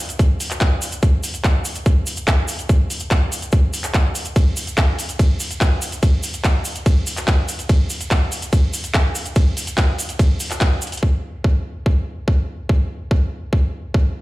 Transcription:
0.09 closed hi-hat medium
0.09 shaker medium
0.19 kick loud
0.19 closed hi-hat medium
0.19 shaker soft
0.40 open hi-hat loud
0.40 shaker loud
0.51 clap soft
0.51 closed hi-hat medium
0.51 shaker medium
0.60 kick loud
0.60 clap loud
0.60 closed hi-hat medium
0.60 shaker soft
0.82 open hi-hat loud
0.82 shaker loud
0.92 closed hi-hat medium
0.92 shaker medium
1.02 kick loud
1.02 closed hi-hat medium
1.02 shaker soft
1.23 open hi-hat loud
1.23 shaker medium
1.34 closed hi-hat medium
1.34 shaker medium
1.44 kick loud
1.44 clap loud
1.44 closed hi-hat medium
1.44 shaker soft
1.65 open hi-hat loud
1.65 shaker loud
1.75 closed hi-hat medium
1.75 shaker medium
1.86 kick loud
1.86 closed hi-hat medium
1.86 shaker soft
2.06 open hi-hat loud
2.06 shaker loud
2.17 closed hi-hat medium
2.17 shaker medium
2.28 kick loud
2.28 clap loud
2.28 closed hi-hat medium
2.28 shaker soft
2.48 open hi-hat loud
2.48 shaker medium
2.59 closed hi-hat medium
2.59 shaker medium
2.69 kick loud
2.69 closed hi-hat medium
2.69 shaker soft
2.90 open hi-hat loud
2.90 shaker loud
3.00 closed hi-hat medium
3.00 shaker medium
3.11 kick loud
3.11 clap loud
3.11 closed hi-hat medium
3.11 shaker soft
3.32 open hi-hat loud
3.32 shaker loud
3.42 closed hi-hat medium
3.42 shaker medium
3.52 kick loud
3.52 closed hi-hat medium
3.52 shaker soft
3.73 open hi-hat loud
3.73 shaker loud
3.84 clap soft
3.84 closed hi-hat medium
3.84 shaker medium
3.94 kick loud
3.94 clap loud
3.94 closed hi-hat medium
3.94 shaker soft
4.15 open hi-hat loud
4.15 shaker medium
4.25 closed hi-hat medium
4.25 shaker medium
4.36 kick loud
4.36 closed hi-hat medium
4.36 ride medium
4.36 shaker soft
4.56 open hi-hat loud
4.56 shaker loud
4.67 closed hi-hat medium
4.67 shaker medium
4.77 kick loud
4.77 clap loud
4.77 closed hi-hat medium
4.77 ride medium
4.77 shaker soft
4.99 open hi-hat loud
4.99 shaker medium
5.09 closed hi-hat medium
5.09 shaker medium
5.19 kick loud
5.19 closed hi-hat medium
5.19 ride medium
5.19 shaker soft
5.40 open hi-hat loud
5.40 shaker medium
5.51 closed hi-hat medium
5.51 shaker medium
5.61 kick loud
5.61 clap loud
5.61 closed hi-hat medium
5.61 ride medium
5.61 shaker soft
5.82 open hi-hat loud
5.82 shaker loud
5.92 closed hi-hat medium
5.92 shaker medium
6.03 kick loud
6.03 closed hi-hat medium
6.03 ride medium
6.03 shaker soft
6.23 open hi-hat loud
6.23 shaker loud
6.34 closed hi-hat medium
6.34 shaker medium
6.44 kick loud
6.44 clap loud
6.44 closed hi-hat medium
6.44 ride medium
6.44 shaker soft
6.65 open hi-hat medium
6.65 shaker medium
6.75 closed hi-hat medium
6.75 shaker medium
6.86 kick loud
6.86 closed hi-hat medium
6.86 ride medium
6.86 shaker soft
7.07 open hi-hat loud
7.07 shaker medium
7.17 clap soft
7.17 closed hi-hat medium
7.17 shaker medium
7.28 kick loud
7.28 clap loud
7.28 closed hi-hat medium
7.28 ride medium
7.28 shaker soft
7.48 open hi-hat medium
7.48 shaker medium
7.59 closed hi-hat medium
7.59 shaker soft
7.69 kick loud
7.69 closed hi-hat medium
7.69 ride medium
7.69 shaker soft
7.90 open hi-hat loud
7.90 shaker medium
8.01 closed hi-hat medium
8.01 shaker medium
8.11 kick loud
8.11 clap loud
8.11 closed hi-hat medium
8.11 ride medium
8.11 shaker soft
8.32 open hi-hat medium
8.32 shaker medium
8.42 closed hi-hat medium
8.42 shaker medium
8.53 kick loud
8.53 closed hi-hat medium
8.53 ride medium
8.53 shaker soft
8.73 open hi-hat loud
8.73 shaker medium
8.84 closed hi-hat medium
8.84 shaker medium
8.94 kick loud
8.94 clap loud
8.94 closed hi-hat medium
8.94 ride medium
8.94 shaker soft
9.15 open hi-hat medium
9.15 shaker loud
9.26 closed hi-hat medium
9.26 shaker medium
9.36 kick loud
9.36 closed hi-hat medium
9.36 ride medium
9.36 shaker soft
9.57 open hi-hat loud
9.57 shaker medium
9.67 closed hi-hat medium
9.67 shaker medium
9.78 kick loud
9.78 clap loud
9.78 closed hi-hat medium
9.78 ride medium
9.78 shaker soft
9.98 open hi-hat medium
9.98 shaker loud
10.09 closed hi-hat medium
10.09 shaker medium
10.19 kick loud
10.19 closed hi-hat medium
10.19 ride medium
10.19 shaker soft
10.40 open hi-hat loud
10.40 shaker loud
10.51 clap soft
10.51 closed hi-hat medium
10.51 shaker medium
10.61 kick loud
10.61 clap loud
10.61 closed hi-hat medium
10.61 ride medium
10.61 shaker soft
10.82 closed hi-hat medium
10.82 shaker medium
10.87 closed hi-hat medium
10.92 closed hi-hat medium
10.92 shaker medium
10.97 closed hi-hat medium
11.03 kick loud
11.44 kick loud
11.86 kick loud
12.28 kick loud
12.69 kick loud
13.11 kick loud
13.53 kick loud
13.94 kick loud

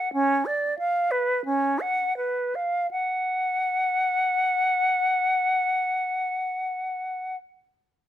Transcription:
0.00 0.13 F#5 medium
0.13 0.47 C#4 medium
0.46 0.78 D5 medium
0.79 1.13 F5 soft
1.11 1.45 B4 medium
1.45 1.81 C#4 medium
1.80 2.16 F#5 medium
2.17 2.57 B4 soft
2.55 2.91 F5 soft
2.91 7.36 F#5 medium

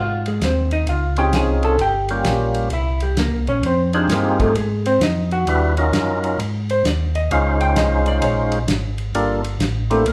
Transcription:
0.00 0.40 G#2 medium
0.00 0.26 F4 medium
0.00 0.26 F5 medium
0.26 0.42 G#3 medium
0.26 0.42 G#4 medium
0.26 ride soft
0.41 0.86 D#2 medium
0.41 0.72 C4 medium
0.41 snare medium
0.41 hi-hat pedal soft
0.41 ride medium
0.45 0.72 C5 medium
0.71 0.88 D#4 medium
0.71 0.88 D#5 medium
0.71 ride soft
0.87 1.32 C#2 medium
0.87 1.18 F4 medium
0.87 1.17 F5 medium
0.87 ride medium
1.16 1.77 C4 medium
1.16 1.77 C#4 medium
1.16 1.77 D#4 medium
1.16 1.77 F4 medium
1.16 1.34 G4 medium
1.16 1.77 G#4 medium
1.16 1.34 G5 medium
1.16 ride soft
1.33 1.78 C2 medium
1.33 1.64 G#4 medium
1.33 1.64 G#5 medium
1.33 snare medium
1.33 hi-hat pedal medium
1.33 ride medium
1.63 1.80 A4 medium
1.63 1.79 A5 loud
1.63 ride soft
1.78 2.24 G1 medium
1.78 2.24 G4 medium
1.78 2.23 G5 medium
1.78 ride medium
2.09 2.69 G3 medium
2.09 2.69 A#3 medium
2.09 2.69 C#4 medium
2.09 2.69 F4 medium
2.09 2.69 G4 medium
2.09 ride soft
2.25 2.70 A#1 medium
2.25 snare medium
2.25 hi-hat pedal medium
2.25 ride medium
2.54 ride soft
2.70 3.15 C2 medium
2.70 3.02 E4 medium
2.70 3.02 E5 medium
2.70 ride medium
3.00 3.18 G3 soft
3.00 3.18 G4 medium
3.00 ride soft
3.16 3.31 C#2 medium
3.16 3.48 A#3 medium
3.16 3.47 A#4 medium
3.16 snare medium
3.16 hi-hat pedal soft
3.16 ride medium
3.32 3.48 C2 soft
3.47 3.62 A#1 medium
3.47 3.64 C#4 medium
3.47 3.64 C#5 medium
3.47 ride soft
3.62 4.07 F2 medium
3.62 ride medium
3.66 3.94 C4 medium
3.66 3.94 C5 medium
3.93 4.53 C4 medium
3.93 4.10 D4 loud
3.93 4.53 D#4 medium
3.93 4.53 F4 medium
3.93 4.53 G4 medium
3.93 4.53 G#4 medium
3.93 4.09 D5 loud
3.93 ride soft
4.08 4.53 G2 medium
4.08 4.39 A#3 medium
4.08 snare medium
4.08 hi-hat pedal soft
4.08 ride medium
4.12 4.39 A#4 medium
4.40 4.56 A3 medium
4.40 4.55 A4 medium
4.40 kick medium
4.40 ride soft
4.54 4.99 G#2 medium
4.54 4.86 G#3 medium
4.54 4.85 G#4 medium
4.54 ride medium
4.86 5.01 C4 medium
4.86 5.01 C5 medium
4.86 ride medium
5.00 5.45 F2 medium
5.00 5.31 D#4 medium
5.00 5.31 D#5 medium
5.00 snare medium
5.00 hi-hat pedal soft
5.00 ride medium
5.31 5.75 F#4 medium
5.31 5.74 F#5 medium
5.31 ride soft
5.45 5.91 D#2 medium
5.45 5.74 G3 medium
5.45 5.75 D4 medium
5.45 5.75 E4 medium
5.45 5.75 F#4 medium
5.45 5.75 B4 medium
5.45 ride medium
5.77 6.40 F#3 medium
5.77 6.39 C#4 soft
5.77 6.39 D#4 medium
5.77 6.40 F4 medium
5.77 6.40 A#4 medium
5.77 ride soft
5.92 6.37 F#2 medium
5.92 snare medium
5.92 hi-hat pedal medium
5.92 ride medium
6.24 ride soft
6.38 6.83 G#2 medium
6.38 ride medium
6.69 6.85 C5 loud
6.69 ride soft
6.84 7.29 D#2 medium
6.84 7.15 D5 medium
6.84 snare medium
6.84 hi-hat pedal medium
6.84 ride medium
7.15 7.31 D#5 medium
7.15 ride soft
7.30 7.75 C#2 medium
7.30 8.59 G#3 medium
7.30 8.59 C#4 soft
7.30 8.59 D#4 medium
7.30 8.59 F4 soft
7.30 8.59 C5 medium
7.30 7.61 F5 medium
7.30 ride medium
7.61 7.77 G5 loud
7.61 ride soft
7.76 8.21 C2 medium
7.76 8.06 D#5 medium
7.76 snare medium
7.76 hi-hat pedal medium
7.76 ride medium
8.06 8.23 D5 loud
8.06 ride soft
8.22 8.67 A#1 medium
8.22 9.11 C#5 medium
8.22 ride medium
8.52 ride medium
8.67 9.12 G#1 medium
8.67 snare medium
8.67 hi-hat pedal soft
8.67 ride medium
8.98 ride soft
9.13 9.58 G1 medium
9.13 9.42 G3 medium
9.13 9.42 A#3 medium
9.13 9.42 D4 medium
9.13 9.42 F4 medium
9.13 9.42 A4 medium
9.13 ride medium
9.44 ride medium
9.59 10.04 A1 medium
9.59 snare medium
9.59 hi-hat pedal soft
9.59 ride medium
9.90 10.06 A3 medium
9.90 10.05 A#3 medium
9.90 10.05 C4 medium
9.90 10.05 D4 medium
9.90 10.05 E4 medium
9.90 10.05 G4 medium
9.90 10.06 A4 medium
9.90 ride medium
10.05 10.13 C2 medium
10.05 10.13 A#3 medium
10.05 10.13 A#4 medium
10.05 ride medium

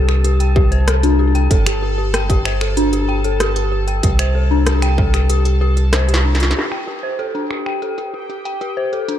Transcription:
0.00 1.48 C2 medium
0.00 6.57 A4 medium
0.00 6.57 A5 medium
0.09 0.19 G4 medium
0.09 finger snap medium
0.24 0.35 G4 medium
0.24 closed hi-hat medium
0.40 0.55 G5 medium
0.40 closed hi-hat soft
0.56 0.67 G4 loud
0.56 kick loud
0.72 0.82 C5 loud
0.72 closed hi-hat soft
0.87 1.02 A4 medium
0.87 cross-stick loud
0.87 closed hi-hat medium
1.03 1.14 D4 loud
1.03 closed hi-hat medium
1.19 1.30 G4 medium
1.35 1.46 G5 medium
1.35 closed hi-hat soft
1.51 4.00 G1 medium
1.51 1.57 A4 medium
1.51 kick loud
1.51 closed hi-hat medium
1.66 1.81 G4 medium
1.66 finger snap medium
1.66 closed hi-hat medium
1.82 1.93 G4 medium
1.98 2.09 G4 medium
2.14 2.29 G5 medium
2.14 cross-stick loud
2.14 closed hi-hat medium
2.30 2.40 G4 loud
2.30 kick loud
2.30 closed hi-hat medium
2.45 2.56 C5 loud
2.45 finger snap medium
2.61 2.76 A4 medium
2.61 finger snap medium
2.77 2.88 D4 loud
2.77 closed hi-hat medium
2.93 3.04 G4 medium
2.93 closed hi-hat soft
3.09 3.19 G5 loud
3.24 3.31 A4 medium
3.24 closed hi-hat soft
3.40 3.55 G4 medium
3.40 cross-stick loud
3.40 closed hi-hat medium
3.56 3.67 G4 medium
3.56 closed hi-hat medium
3.72 3.82 G4 medium
3.88 4.03 G5 medium
3.88 closed hi-hat soft
4.03 6.53 C2 medium
4.03 4.14 G4 loud
4.03 kick loud
4.03 closed hi-hat medium
4.19 4.30 C5 loud
4.19 finger snap medium
4.19 closed hi-hat medium
4.35 4.50 A4 medium
4.51 4.61 D4 loud
4.66 4.77 G4 medium
4.66 cross-stick loud
4.66 closed hi-hat medium
4.82 4.93 G5 loud
4.82 finger snap medium
4.82 closed hi-hat medium
4.98 5.04 A4 medium
4.98 kick loud
5.14 5.28 G4 medium
5.14 finger snap medium
5.14 closed hi-hat soft
5.30 5.40 G4 medium
5.30 closed hi-hat medium
5.45 5.56 G4 medium
5.45 closed hi-hat medium
5.61 5.68 G4 loud
5.77 5.83 G4 medium
5.77 closed hi-hat soft
5.93 6.03 C5 medium
5.93 cross-stick loud
5.93 snare medium
5.93 closed hi-hat medium
6.08 6.19 G4 medium
6.08 closed hi-hat medium
6.14 snare medium
6.24 6.35 D4 medium
6.35 snare soft
6.40 6.51 F4 loud
6.40 snare medium
6.40 closed hi-hat soft
6.51 snare medium
6.56 9.19 G4 medium
6.56 6.67 G4 medium
6.56 9.19 G5 medium
6.56 snare medium
6.56 closed hi-hat medium
6.72 6.87 G5 medium
6.72 finger snap medium
6.72 closed hi-hat medium
6.87 6.98 G4 medium
7.03 7.14 C5 medium
7.19 7.34 A4 medium
7.19 closed hi-hat medium
7.35 7.46 D4 medium
7.35 closed hi-hat medium
7.51 7.61 G4 medium
7.51 finger snap medium
7.66 7.77 G5 medium
7.66 finger snap medium
7.82 7.89 A4 medium
7.82 closed hi-hat medium
7.98 8.12 G4 medium
7.98 closed hi-hat medium
8.14 8.24 G4 medium
8.30 8.40 G4 medium
8.30 closed hi-hat soft
8.45 8.60 G5 medium
8.45 closed hi-hat medium
8.61 8.72 G4 loud
8.61 closed hi-hat medium
8.77 8.88 C5 medium
8.93 9.08 A4 medium
8.93 closed hi-hat soft
9.08 9.19 D4 medium
9.08 closed hi-hat medium

